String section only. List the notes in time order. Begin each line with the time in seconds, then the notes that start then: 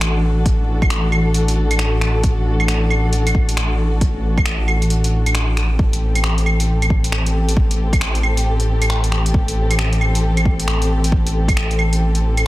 Already playing: E3 D4 F#4 A4
5.79 E3 C4 G4 A4